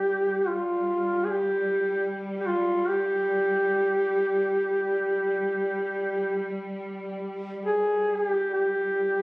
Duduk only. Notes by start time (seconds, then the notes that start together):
Already playing: G4
0.47 F4
1.24 G#4
1.30 G4
2.40 G4
2.47 F4
2.88 G4
7.66 G#4
8.16 G4
8.53 G4